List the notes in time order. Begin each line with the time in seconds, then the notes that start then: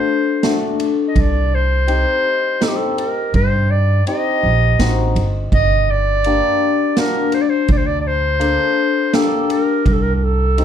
Already playing: C5
0.43 A3 D4 F#4, snare, ride
0.80 ride
1.08 D#5
1.16 C2, kick, ride
1.21 D5
1.55 C5
1.87 C4 D#4 G4, ride
2.61 C4 D#4 G4 A4, snare, ride
2.69 G4
2.77 A4
2.98 A#4, ride
3.34 G2 C5, kick, ride
3.71 D5
4.07 C4 D#4 G4 D#5, ride
4.43 A#1
4.79 A1 C4 D#4 F#4, snare, ride
5.15 G1, ride
5.52 G1 D#5, kick, ride
5.91 D5
6.24 A#3 D4 G4, ride
6.97 A#3 D4 F#4 A#4, snare, ride
7.32 C5, ride
7.42 D5
7.50 C5
7.68 D2 D5, kick, ride
7.78 C5
7.86 D5
8.01 D5
8.07 C5
8.39 A#3 D4 A4, ride
9.13 A#3 D4 G4 A4, snare, ride
9.50 A#4, ride
9.86 C2 A#4, kick, ride
9.92 A4
10.02 A#4
10.15 A#4
10.24 A4
10.58 C4 D#4 G4, ride